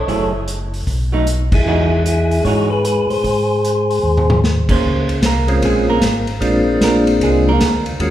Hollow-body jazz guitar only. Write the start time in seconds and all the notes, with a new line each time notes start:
0.08 F#3 A3 E4 G#4
1.12 F#3 A3 D#4
1.67 E3 G#3 D#4 F#4
2.46 E3 G#3 D#4 F#4
4.70 A#3 C#4 G#4 C5
5.25 A#3 A#4
5.65 G#3 G#4
5.90 A#3 A#4
6.83 A#3 A#4
7.23 G#3 G#4
7.49 A#3 A#4